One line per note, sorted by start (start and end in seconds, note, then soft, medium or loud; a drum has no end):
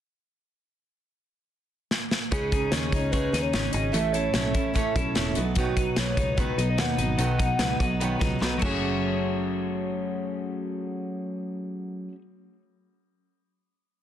1.91 snare medium
2.11 snare medium
2.31 2.66 C#2 loud
2.31 2.52 C#3 medium
2.31 2.52 G#3 medium
2.31 2.52 C#4 medium
2.31 2.52 D#4 medium
2.31 2.72 G#4 loud
2.31 2.50 G#4 medium
2.31 kick loud
2.31 closed hi-hat medium
2.51 2.72 C#4 soft
2.51 2.73 D#4 soft
2.51 2.72 G#4 medium
2.51 kick medium
2.51 closed hi-hat medium
2.71 2.90 D#2 medium
2.71 2.93 G#3 medium
2.71 2.93 C#4 medium
2.71 2.94 D#4 medium
2.71 3.13 C#5 medium
2.71 snare loud
2.71 closed hi-hat medium
2.75 2.92 G#4 medium
2.92 3.27 C#2 medium
2.92 3.13 D#4 soft
2.92 3.13 G#4 medium
2.92 kick medium
2.92 closed hi-hat medium
2.96 3.12 C#4 soft
3.11 3.33 C#3 medium
3.11 3.33 G#3 medium
3.11 3.34 C#4 medium
3.11 3.33 D#4 medium
3.11 3.31 G#4 medium
3.11 3.43 B4 loud
3.11 kick medium
3.11 closed hi-hat medium
3.32 3.50 D#2 medium
3.32 3.52 C#4 soft
3.32 3.53 D#4 soft
3.32 3.53 G#4 soft
3.32 snare soft
3.32 closed hi-hat medium
3.42 3.74 C#5 medium
3.53 3.71 G#1 medium
3.53 3.74 G#3 soft
3.53 3.74 C#4 medium
3.53 3.73 D#4 medium
3.53 3.71 G#4 medium
3.53 snare loud
3.53 closed hi-hat medium
3.72 3.91 G#1 medium
3.72 3.93 C#4 soft
3.72 3.93 D#4 soft
3.72 3.94 G#4 medium
3.72 3.92 D#5 loud
3.72 closed hi-hat medium
3.92 4.29 A1 medium
3.92 4.13 A2 medium
3.92 4.14 E3 medium
3.92 4.14 A3 medium
3.92 4.14 C#4 medium
3.92 4.13 E4 medium
3.92 4.12 A4 medium
3.92 4.12 E5 loud
3.92 closed hi-hat medium
4.13 4.32 A3 soft
4.13 4.34 C#4 soft
4.13 4.35 E4 medium
4.13 4.34 A4 medium
4.13 4.71 C#5 loud
4.13 closed hi-hat medium
4.33 4.55 B1 medium
4.33 4.55 A3 medium
4.33 4.55 C#4 medium
4.33 4.53 E4 medium
4.33 4.52 A4 medium
4.33 snare loud
4.33 closed hi-hat medium
4.53 4.90 A1 medium
4.53 4.74 A3 soft
4.53 4.74 C#4 soft
4.53 4.74 E4 medium
4.53 4.74 A4 soft
4.53 kick medium
4.53 closed hi-hat medium
4.74 4.95 A2 medium
4.74 4.95 E3 medium
4.74 4.96 A3 medium
4.74 4.96 C#4 medium
4.74 4.96 E4 medium
4.74 4.94 A4 medium
4.74 kick medium
4.74 closed hi-hat medium
4.95 5.13 B1 medium
4.95 5.14 A3 soft
4.95 5.16 C#4 medium
4.95 5.16 E4 medium
4.95 5.16 A4 medium
4.95 kick loud
4.95 closed hi-hat medium
5.15 5.34 E1 medium
5.15 5.36 A3 medium
5.15 5.37 C#4 medium
5.15 5.36 E4 medium
5.15 5.35 A4 medium
5.15 snare loud
5.15 closed hi-hat medium
5.35 5.89 B1 loud
5.35 5.56 B2 medium
5.35 5.57 F#3 medium
5.35 5.57 B3 medium
5.35 5.57 D#4 medium
5.35 5.56 B4 medium
5.35 closed hi-hat medium
5.55 5.77 B2 medium
5.55 5.78 D#3 medium
5.55 5.78 F#3 medium
5.55 5.77 B3 medium
5.55 5.77 D#4 medium
5.55 5.99 F#4 medium
5.55 5.76 B4 medium
5.55 kick loud
5.55 closed hi-hat medium
5.77 5.95 F#3 soft
5.77 5.96 B3 soft
5.77 6.17 D#4 medium
5.77 5.97 B4 medium
5.77 kick medium
5.77 closed hi-hat medium
5.96 6.15 B1 medium
5.96 6.17 F#3 medium
5.96 6.18 B3 medium
5.96 6.17 D#4 medium
5.96 6.16 B4 medium
5.96 6.41 C#5 loud
5.96 snare loud
5.96 closed hi-hat medium
6.17 6.52 C#2 medium
6.17 6.37 F#3 soft
6.17 6.38 B3 medium
6.17 6.38 D#4 soft
6.17 6.38 B4 medium
6.17 kick medium
6.17 closed hi-hat medium
6.37 6.58 B2 medium
6.37 6.59 D#3 medium
6.37 6.59 F#3 medium
6.37 6.59 B3 medium
6.37 6.58 D#4 medium
6.37 6.69 B4 loud
6.37 6.57 B4 medium
6.37 kick medium
6.37 closed hi-hat medium
6.58 6.76 B1 medium
6.58 6.76 F#3 soft
6.58 6.78 B3 soft
6.58 6.79 D#4 medium
6.58 6.79 B4 medium
6.58 closed hi-hat medium
6.70 6.81 D#5 medium
6.78 6.96 D#2 medium
6.78 6.99 F#3 soft
6.78 6.99 B3 medium
6.78 6.99 D#4 medium
6.78 6.98 B4 medium
6.78 7.00 F#5 loud
6.78 snare loud
6.78 closed hi-hat medium
6.98 7.16 G#1 medium
6.98 7.18 F#3 soft
6.98 7.18 B3 medium
6.98 7.19 D#4 medium
6.98 7.19 B4 medium
6.98 8.39 F#5 loud
6.98 closed hi-hat medium
7.18 7.54 B1 loud
7.18 7.40 B2 medium
7.18 7.40 D#3 medium
7.18 7.40 F#3 medium
7.18 7.40 B3 medium
7.18 7.39 D#4 medium
7.18 7.38 B4 medium
7.18 closed hi-hat medium
7.40 7.59 F#3 soft
7.40 7.60 B3 soft
7.40 7.61 D#4 medium
7.40 7.60 B4 medium
7.40 kick medium
7.40 closed hi-hat medium
7.59 7.77 C#2 medium
7.59 7.81 F#3 medium
7.59 7.81 B3 medium
7.59 7.80 D#4 medium
7.59 7.79 B4 medium
7.59 snare loud
7.59 closed hi-hat loud
7.80 8.15 B1 medium
7.80 8.00 F#3 medium
7.80 8.00 B3 medium
7.80 8.01 D#4 medium
7.80 8.01 B4 medium
7.80 kick medium
7.80 closed hi-hat medium
8.00 8.21 B2 medium
8.00 8.22 D#3 medium
8.00 8.21 F#3 medium
8.00 8.20 B3 medium
8.00 8.19 D#4 medium
8.00 8.18 B4 loud
8.00 closed hi-hat medium
8.19 8.39 C#2 medium
8.19 8.38 F#3 soft
8.19 8.39 B3 medium
8.19 8.40 D#4 soft
8.19 8.41 B4 medium
8.19 kick loud
8.19 snare soft
8.19 closed hi-hat medium
8.39 8.59 B1 medium
8.39 8.58 F#3 medium
8.39 8.61 B3 medium
8.39 8.62 D#4 medium
8.39 8.63 B4 medium
8.39 snare medium
8.59 11.67 F#1 loud
8.59 12.09 F#3 medium
8.59 12.11 A3 medium
8.59 12.13 C#4 medium
8.59 kick loud
8.59 crash medium
8.63 12.13 F#4 medium
8.63 12.15 G#4 loud
8.68 12.18 F#4 medium
8.68 12.21 G#4 medium